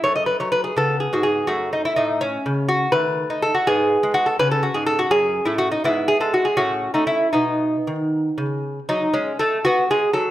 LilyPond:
<<
  \new Staff \with { instrumentName = "Lute" } { \time 6/8 \key fis \dorian \tempo 4. = 82 cis''16 dis''16 b'16 cis''16 b'16 gis'16 a'8 gis'16 fis'16 gis'8 | fis'8 dis'16 e'16 dis'8 cis'4 fis'8 | b'4 a'16 fis'16 gis'4 fis'16 a'16 | b'16 a'16 fis'16 gis'16 a'16 fis'16 gis'8. e'16 fis'16 dis'16 |
e'8 gis'16 a'16 fis'16 gis'16 fis'8. dis'16 e'8 | dis'2~ dis'8 r8 | dis'8 cis'8 a'8 fis'8 gis'8 a'8 | }
  \new Staff \with { instrumentName = "Lute" } { \clef bass \time 6/8 \key fis \dorian << { a4. b4. | a2. | a4. b4. | cis'4. cis'4. |
b4. cis'4. | b2. | r2. | } \\ { fis,8. fis8. cis8. gis,8. | fis,4 a,4 cis4 | dis8. dis'8. gis,8. gis8. | cis8. gis,8. fis,8. a,8. |
gis,8. gis8. a,8. a8. | b,4 dis4 cis4 | fis8 gis8 a8 b8 gis8 fis8 | } >> }
>>